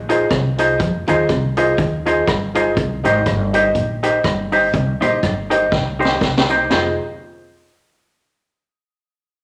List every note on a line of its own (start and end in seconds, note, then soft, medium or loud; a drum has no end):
0.00 0.24 A#1 loud
0.09 0.24 D#4 medium
0.09 0.25 F4 medium
0.09 0.25 G#4 medium
0.09 0.24 G#4 medium
0.09 0.25 C5 medium
0.09 0.24 C5 medium
0.09 0.25 D#5 loud
0.09 closed hi-hat medium
0.09 cabasa medium
0.31 0.73 C2 loud
0.31 0.47 C3 loud
0.31 0.36 C5 soft
0.31 0.36 D#5 soft
0.31 kick loud
0.31 cross-stick loud
0.31 closed hi-hat medium
0.31 cabasa medium
0.58 0.73 D#4 medium
0.58 0.74 F4 medium
0.58 0.74 G#4 medium
0.58 0.73 G#4 medium
0.58 0.74 C5 medium
0.58 0.74 D#5 loud
0.58 closed hi-hat medium
0.58 cabasa medium
0.79 1.04 F2 loud
0.79 0.96 F3 medium
0.79 kick loud
0.79 closed hi-hat medium
0.79 cabasa medium
1.07 1.26 D#2 medium
1.07 1.21 D#3 medium
1.07 1.22 D#4 medium
1.07 1.23 F4 loud
1.07 1.23 G#4 medium
1.07 1.23 C5 loud
1.07 1.24 D#5 loud
1.07 closed hi-hat medium
1.07 cabasa medium
1.29 1.71 C2 loud
1.29 1.46 C3 medium
1.29 1.35 C5 soft
1.29 1.35 D#5 soft
1.29 kick loud
1.29 cross-stick medium
1.29 closed hi-hat medium
1.29 cabasa medium
1.57 1.71 D#4 medium
1.57 1.72 F4 loud
1.57 1.72 G#4 medium
1.57 1.73 C5 medium
1.57 1.72 C5 medium
1.57 1.73 D#5 loud
1.57 closed hi-hat medium
1.57 cabasa medium
1.78 2.20 D#2 medium
1.78 1.95 D#3 medium
1.78 kick loud
1.78 closed hi-hat medium
1.78 cabasa medium
2.06 2.20 D#4 medium
2.06 2.21 F4 medium
2.06 2.21 G#4 medium
2.06 2.21 C5 medium
2.06 2.22 D#5 loud
2.06 closed hi-hat medium
2.06 cabasa medium
2.27 2.77 G1 medium
2.27 2.44 G2 medium
2.27 kick loud
2.27 cross-stick loud
2.27 closed hi-hat medium
2.27 cabasa medium
2.55 2.70 D#4 medium
2.55 2.70 F4 medium
2.55 2.70 G#4 medium
2.55 2.70 G#4 loud
2.55 2.71 C5 medium
2.55 2.70 C5 loud
2.55 2.71 D#5 medium
2.55 closed hi-hat medium
2.55 cabasa medium
2.77 3.01 C2 loud
2.77 2.93 C3 medium
2.77 kick loud
2.77 closed hi-hat medium
2.77 cabasa medium
3.04 3.23 G#1 loud
3.04 3.18 G#2 medium
3.04 3.19 D#4 medium
3.04 3.20 G4 medium
3.04 3.19 G4 medium
3.04 3.20 C5 medium
3.04 3.19 C5 medium
3.04 3.20 D#5 loud
3.04 closed hi-hat medium
3.04 cabasa medium
3.26 3.68 G1 loud
3.26 3.43 G2 medium
3.26 3.32 C5 soft
3.26 3.32 D#5 soft
3.26 kick loud
3.26 cross-stick loud
3.26 closed hi-hat medium
3.26 cabasa medium
3.53 3.69 D#4 loud
3.53 3.68 D#4 medium
3.53 3.69 G4 medium
3.53 3.68 G4 medium
3.53 3.69 C5 medium
3.53 3.69 D#5 loud
3.53 closed hi-hat loud
3.53 cabasa medium
3.75 4.17 A#1 loud
3.75 3.92 A#2 medium
3.75 kick medium
3.75 closed hi-hat medium
3.75 cabasa medium
4.03 4.18 D#4 medium
4.03 4.17 D#4 medium
4.03 4.18 G4 medium
4.03 4.17 G4 medium
4.03 4.18 C5 medium
4.03 4.19 D#5 medium
4.03 closed hi-hat medium
4.03 cabasa medium
4.24 4.66 G1 loud
4.24 4.41 G2 medium
4.24 4.30 C5 soft
4.24 4.30 D#5 soft
4.24 kick loud
4.24 cross-stick loud
4.24 closed hi-hat medium
4.24 cabasa medium
4.52 4.67 D#4 medium
4.52 4.66 D#4 medium
4.52 4.67 G4 medium
4.52 4.68 C5 medium
4.52 4.67 C5 loud
4.52 4.68 D#5 medium
4.52 open hi-hat medium
4.52 cabasa medium
4.74 4.97 C2 loud
4.74 4.91 C3 loud
4.74 kick loud
4.74 closed hi-hat medium
4.74 cabasa medium
5.01 5.20 A#1 medium
5.01 5.15 A#2 medium
5.01 5.15 D#4 medium
5.01 5.17 D#4 loud
5.01 5.16 G4 medium
5.01 5.17 G4 medium
5.01 5.16 C5 medium
5.01 5.17 C5 medium
5.01 5.17 D#5 loud
5.01 closed hi-hat medium
5.01 cabasa medium
5.23 5.65 G1 loud
5.23 5.40 G2 medium
5.23 5.29 C5 soft
5.23 5.28 D#5 soft
5.23 kick medium
5.23 cross-stick loud
5.23 closed hi-hat medium
5.23 cabasa medium
5.50 5.65 D#4 medium
5.50 5.64 D#4 medium
5.50 5.65 G4 medium
5.50 5.66 G4 medium
5.50 5.66 C5 medium
5.50 5.65 C5 medium
5.50 5.66 D#5 loud
5.50 closed hi-hat medium
5.50 cabasa medium
5.72 6.14 C2 medium
5.72 5.89 C3 medium
5.72 kick loud
5.72 snare medium
5.72 cabasa medium
5.99 6.14 D#4 medium
5.99 6.15 G4 medium
5.99 6.14 G4 medium
5.99 6.15 C5 medium
5.99 6.14 C5 loud
5.99 6.15 D#5 loud
5.99 cabasa medium
6.05 snare medium
6.21 6.63 C2 medium
6.21 6.38 C3 medium
6.21 kick loud
6.21 snare medium
6.21 cabasa medium
6.38 snare loud
6.49 6.64 D#4 medium
6.49 6.63 D#4 medium
6.49 6.64 G4 medium
6.49 6.64 C5 medium
6.49 6.65 D#5 medium
6.49 cabasa medium
6.70 6.96 F1 medium
6.70 6.87 D#4 medium
6.70 6.91 F4 medium
6.70 6.91 G#4 medium
6.70 6.87 G#4 medium
6.70 6.91 C5 medium
6.70 6.88 C5 medium
6.70 6.91 D#5 medium
6.70 snare loud
6.70 splash medium
6.70 cabasa medium